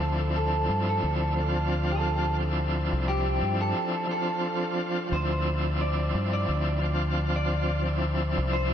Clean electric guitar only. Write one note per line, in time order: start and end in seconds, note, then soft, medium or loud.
0.00 0.29 A4 medium
0.36 0.82 A4 loud
0.89 1.33 A4 medium
1.91 2.51 A4 medium
3.08 3.55 G4 loud
3.61 4.05 A4 medium
4.11 5.00 A4 medium
5.13 5.74 C5 loud
5.81 6.28 D5 loud
6.33 6.78 D5 medium
7.36 7.96 D5 medium
8.53 8.74 C5 loud